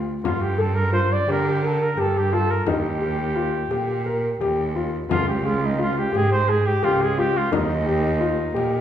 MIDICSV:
0, 0, Header, 1, 5, 480
1, 0, Start_track
1, 0, Tempo, 692042
1, 175, Time_signature, 7, 3, 24, 8
1, 6110, End_track
2, 0, Start_track
2, 0, Title_t, "Flugelhorn"
2, 0, Program_c, 0, 56
2, 169, Note_on_c, 0, 65, 70
2, 288, Note_on_c, 0, 67, 71
2, 298, Note_off_c, 0, 65, 0
2, 417, Note_on_c, 0, 69, 78
2, 427, Note_off_c, 0, 67, 0
2, 518, Note_on_c, 0, 70, 82
2, 529, Note_off_c, 0, 69, 0
2, 640, Note_off_c, 0, 70, 0
2, 644, Note_on_c, 0, 72, 88
2, 781, Note_on_c, 0, 74, 83
2, 791, Note_off_c, 0, 72, 0
2, 907, Note_on_c, 0, 70, 95
2, 918, Note_off_c, 0, 74, 0
2, 1036, Note_on_c, 0, 67, 77
2, 1047, Note_off_c, 0, 70, 0
2, 1152, Note_on_c, 0, 69, 82
2, 1162, Note_off_c, 0, 67, 0
2, 1267, Note_on_c, 0, 70, 79
2, 1278, Note_off_c, 0, 69, 0
2, 1391, Note_on_c, 0, 69, 80
2, 1401, Note_off_c, 0, 70, 0
2, 1509, Note_on_c, 0, 67, 79
2, 1520, Note_off_c, 0, 69, 0
2, 1617, Note_on_c, 0, 69, 87
2, 1627, Note_off_c, 0, 67, 0
2, 1738, Note_on_c, 0, 70, 78
2, 1748, Note_off_c, 0, 69, 0
2, 1848, Note_off_c, 0, 70, 0
2, 1852, Note_on_c, 0, 67, 72
2, 3267, Note_off_c, 0, 67, 0
2, 3542, Note_on_c, 0, 65, 91
2, 3651, Note_off_c, 0, 65, 0
2, 3660, Note_on_c, 0, 67, 69
2, 3786, Note_on_c, 0, 65, 76
2, 3796, Note_off_c, 0, 67, 0
2, 3923, Note_on_c, 0, 63, 75
2, 3933, Note_off_c, 0, 65, 0
2, 4029, Note_off_c, 0, 63, 0
2, 4037, Note_on_c, 0, 65, 77
2, 4146, Note_on_c, 0, 67, 83
2, 4156, Note_off_c, 0, 65, 0
2, 4272, Note_on_c, 0, 68, 90
2, 4283, Note_off_c, 0, 67, 0
2, 4381, Note_off_c, 0, 68, 0
2, 4385, Note_on_c, 0, 72, 91
2, 4502, Note_on_c, 0, 68, 85
2, 4513, Note_off_c, 0, 72, 0
2, 4623, Note_on_c, 0, 67, 96
2, 4633, Note_off_c, 0, 68, 0
2, 4746, Note_on_c, 0, 65, 83
2, 4757, Note_off_c, 0, 67, 0
2, 4869, Note_on_c, 0, 68, 88
2, 4879, Note_off_c, 0, 65, 0
2, 4988, Note_on_c, 0, 67, 92
2, 4998, Note_off_c, 0, 68, 0
2, 5113, Note_on_c, 0, 65, 85
2, 5124, Note_off_c, 0, 67, 0
2, 5217, Note_off_c, 0, 65, 0
2, 5222, Note_on_c, 0, 63, 79
2, 6110, Note_off_c, 0, 63, 0
2, 6110, End_track
3, 0, Start_track
3, 0, Title_t, "Grand piano"
3, 0, Program_c, 1, 0
3, 167, Note_on_c, 1, 65, 69
3, 296, Note_off_c, 1, 65, 0
3, 402, Note_on_c, 1, 69, 63
3, 533, Note_off_c, 1, 69, 0
3, 642, Note_on_c, 1, 65, 66
3, 773, Note_off_c, 1, 65, 0
3, 888, Note_on_c, 1, 67, 69
3, 1017, Note_off_c, 1, 67, 0
3, 1126, Note_on_c, 1, 70, 70
3, 1255, Note_off_c, 1, 70, 0
3, 1368, Note_on_c, 1, 67, 77
3, 1497, Note_off_c, 1, 67, 0
3, 1615, Note_on_c, 1, 65, 73
3, 1742, Note_off_c, 1, 65, 0
3, 1851, Note_on_c, 1, 63, 79
3, 1979, Note_off_c, 1, 63, 0
3, 2091, Note_on_c, 1, 67, 55
3, 2219, Note_off_c, 1, 67, 0
3, 2328, Note_on_c, 1, 65, 70
3, 2457, Note_off_c, 1, 65, 0
3, 2572, Note_on_c, 1, 67, 69
3, 2700, Note_off_c, 1, 67, 0
3, 2816, Note_on_c, 1, 70, 71
3, 2943, Note_off_c, 1, 70, 0
3, 3057, Note_on_c, 1, 67, 78
3, 3183, Note_off_c, 1, 67, 0
3, 3299, Note_on_c, 1, 65, 71
3, 3425, Note_off_c, 1, 65, 0
3, 3533, Note_on_c, 1, 65, 76
3, 3661, Note_off_c, 1, 65, 0
3, 3777, Note_on_c, 1, 68, 65
3, 3903, Note_off_c, 1, 68, 0
3, 4015, Note_on_c, 1, 65, 71
3, 4143, Note_off_c, 1, 65, 0
3, 4247, Note_on_c, 1, 67, 76
3, 4376, Note_off_c, 1, 67, 0
3, 4492, Note_on_c, 1, 68, 72
3, 4620, Note_off_c, 1, 68, 0
3, 4735, Note_on_c, 1, 67, 85
3, 4862, Note_off_c, 1, 67, 0
3, 4981, Note_on_c, 1, 65, 75
3, 5106, Note_off_c, 1, 65, 0
3, 5216, Note_on_c, 1, 63, 81
3, 5343, Note_off_c, 1, 63, 0
3, 5453, Note_on_c, 1, 67, 69
3, 5581, Note_off_c, 1, 67, 0
3, 5691, Note_on_c, 1, 65, 70
3, 5819, Note_off_c, 1, 65, 0
3, 5925, Note_on_c, 1, 67, 73
3, 6055, Note_off_c, 1, 67, 0
3, 6110, End_track
4, 0, Start_track
4, 0, Title_t, "Cello"
4, 0, Program_c, 2, 42
4, 0, Note_on_c, 2, 38, 70
4, 147, Note_off_c, 2, 38, 0
4, 170, Note_on_c, 2, 43, 84
4, 865, Note_off_c, 2, 43, 0
4, 892, Note_on_c, 2, 50, 79
4, 1346, Note_off_c, 2, 50, 0
4, 1368, Note_on_c, 2, 43, 74
4, 1824, Note_off_c, 2, 43, 0
4, 1844, Note_on_c, 2, 39, 83
4, 2542, Note_off_c, 2, 39, 0
4, 2570, Note_on_c, 2, 46, 70
4, 3025, Note_off_c, 2, 46, 0
4, 3056, Note_on_c, 2, 39, 73
4, 3508, Note_off_c, 2, 39, 0
4, 3534, Note_on_c, 2, 37, 95
4, 4227, Note_off_c, 2, 37, 0
4, 4260, Note_on_c, 2, 44, 77
4, 4711, Note_off_c, 2, 44, 0
4, 4743, Note_on_c, 2, 37, 79
4, 5192, Note_off_c, 2, 37, 0
4, 5219, Note_on_c, 2, 39, 93
4, 5910, Note_off_c, 2, 39, 0
4, 5937, Note_on_c, 2, 46, 78
4, 6110, Note_off_c, 2, 46, 0
4, 6110, End_track
5, 0, Start_track
5, 0, Title_t, "Frame drum"
5, 173, Note_on_c, 9, 64, 60
5, 242, Note_off_c, 9, 64, 0
5, 894, Note_on_c, 9, 64, 39
5, 964, Note_off_c, 9, 64, 0
5, 1370, Note_on_c, 9, 64, 38
5, 1439, Note_off_c, 9, 64, 0
5, 1608, Note_on_c, 9, 64, 17
5, 1678, Note_off_c, 9, 64, 0
5, 1849, Note_on_c, 9, 64, 55
5, 1918, Note_off_c, 9, 64, 0
5, 2573, Note_on_c, 9, 64, 40
5, 2642, Note_off_c, 9, 64, 0
5, 3062, Note_on_c, 9, 64, 39
5, 3131, Note_off_c, 9, 64, 0
5, 3307, Note_on_c, 9, 64, 17
5, 3376, Note_off_c, 9, 64, 0
5, 3544, Note_on_c, 9, 64, 65
5, 3613, Note_off_c, 9, 64, 0
5, 4265, Note_on_c, 9, 64, 40
5, 4334, Note_off_c, 9, 64, 0
5, 4742, Note_on_c, 9, 64, 43
5, 4811, Note_off_c, 9, 64, 0
5, 4979, Note_on_c, 9, 64, 18
5, 5048, Note_off_c, 9, 64, 0
5, 5221, Note_on_c, 9, 64, 61
5, 5290, Note_off_c, 9, 64, 0
5, 5941, Note_on_c, 9, 64, 46
5, 6010, Note_off_c, 9, 64, 0
5, 6110, End_track
0, 0, End_of_file